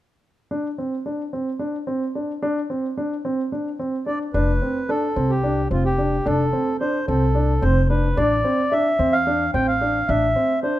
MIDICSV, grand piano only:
0, 0, Header, 1, 2, 480
1, 0, Start_track
1, 0, Tempo, 547445
1, 448, Time_signature, 7, 3, 24, 8
1, 9465, End_track
2, 0, Start_track
2, 0, Title_t, "Grand piano"
2, 0, Program_c, 0, 0
2, 447, Note_on_c, 0, 62, 56
2, 582, Note_off_c, 0, 62, 0
2, 687, Note_on_c, 0, 60, 52
2, 822, Note_off_c, 0, 60, 0
2, 927, Note_on_c, 0, 62, 49
2, 1063, Note_off_c, 0, 62, 0
2, 1166, Note_on_c, 0, 60, 55
2, 1302, Note_off_c, 0, 60, 0
2, 1398, Note_on_c, 0, 62, 50
2, 1536, Note_off_c, 0, 62, 0
2, 1640, Note_on_c, 0, 60, 58
2, 1777, Note_off_c, 0, 60, 0
2, 1888, Note_on_c, 0, 62, 48
2, 2023, Note_off_c, 0, 62, 0
2, 2126, Note_on_c, 0, 62, 65
2, 2262, Note_off_c, 0, 62, 0
2, 2366, Note_on_c, 0, 60, 56
2, 2502, Note_off_c, 0, 60, 0
2, 2608, Note_on_c, 0, 62, 57
2, 2743, Note_off_c, 0, 62, 0
2, 2848, Note_on_c, 0, 60, 58
2, 2983, Note_off_c, 0, 60, 0
2, 3088, Note_on_c, 0, 62, 48
2, 3223, Note_off_c, 0, 62, 0
2, 3327, Note_on_c, 0, 60, 53
2, 3462, Note_off_c, 0, 60, 0
2, 3563, Note_on_c, 0, 62, 51
2, 3699, Note_off_c, 0, 62, 0
2, 3808, Note_on_c, 0, 62, 62
2, 3943, Note_off_c, 0, 62, 0
2, 4050, Note_on_c, 0, 60, 53
2, 4184, Note_off_c, 0, 60, 0
2, 4288, Note_on_c, 0, 62, 55
2, 4423, Note_off_c, 0, 62, 0
2, 4526, Note_on_c, 0, 60, 60
2, 4661, Note_off_c, 0, 60, 0
2, 4765, Note_on_c, 0, 62, 52
2, 4900, Note_off_c, 0, 62, 0
2, 5005, Note_on_c, 0, 60, 56
2, 5140, Note_off_c, 0, 60, 0
2, 5245, Note_on_c, 0, 62, 53
2, 5381, Note_off_c, 0, 62, 0
2, 5486, Note_on_c, 0, 62, 64
2, 5621, Note_off_c, 0, 62, 0
2, 5724, Note_on_c, 0, 60, 57
2, 5860, Note_off_c, 0, 60, 0
2, 5969, Note_on_c, 0, 62, 55
2, 6103, Note_off_c, 0, 62, 0
2, 6206, Note_on_c, 0, 60, 63
2, 6341, Note_off_c, 0, 60, 0
2, 6443, Note_on_c, 0, 62, 55
2, 6579, Note_off_c, 0, 62, 0
2, 6683, Note_on_c, 0, 60, 62
2, 6818, Note_off_c, 0, 60, 0
2, 6926, Note_on_c, 0, 62, 52
2, 7061, Note_off_c, 0, 62, 0
2, 7166, Note_on_c, 0, 62, 69
2, 7301, Note_off_c, 0, 62, 0
2, 7403, Note_on_c, 0, 60, 58
2, 7538, Note_off_c, 0, 60, 0
2, 7643, Note_on_c, 0, 62, 55
2, 7779, Note_off_c, 0, 62, 0
2, 7884, Note_on_c, 0, 60, 62
2, 8019, Note_off_c, 0, 60, 0
2, 8126, Note_on_c, 0, 62, 57
2, 8261, Note_off_c, 0, 62, 0
2, 8365, Note_on_c, 0, 60, 59
2, 8500, Note_off_c, 0, 60, 0
2, 8605, Note_on_c, 0, 62, 51
2, 8740, Note_off_c, 0, 62, 0
2, 8847, Note_on_c, 0, 62, 63
2, 8981, Note_off_c, 0, 62, 0
2, 9082, Note_on_c, 0, 60, 57
2, 9217, Note_off_c, 0, 60, 0
2, 9321, Note_on_c, 0, 62, 55
2, 9457, Note_off_c, 0, 62, 0
2, 9465, End_track
0, 0, End_of_file